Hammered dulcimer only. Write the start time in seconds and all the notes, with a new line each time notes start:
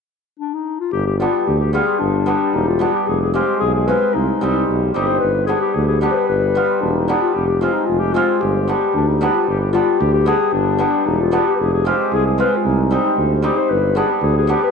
1.20 G3 B3 D4
1.73 G3 B3 F4
2.26 G3 B3 D4
2.79 G3 B3 D4
3.34 G#3 C4 F4
3.88 G#3 C4 F4
4.41 G3 C4 D#4
4.94 G3 C4 D#4
5.47 G3 B3 D4
6.01 G3 B3 D4
6.55 G3 B3 F4
7.08 G3 B3 D4
7.61 G#3 C4 F4
8.14 G#3 C4 F4
8.68 G3 B3 D4
9.21 G3 B3 D4
9.73 G3 B3 D4
10.26 G3 B3 D4
10.78 G3 B3 D4
11.31 G3 B3 D4
11.85 G#3 C4 F4
12.38 G#3 C4 F4
12.91 G3 C4 D#4
13.42 G3 C4 D#4
13.95 G3 B3 D4
14.47 G3 B3 D4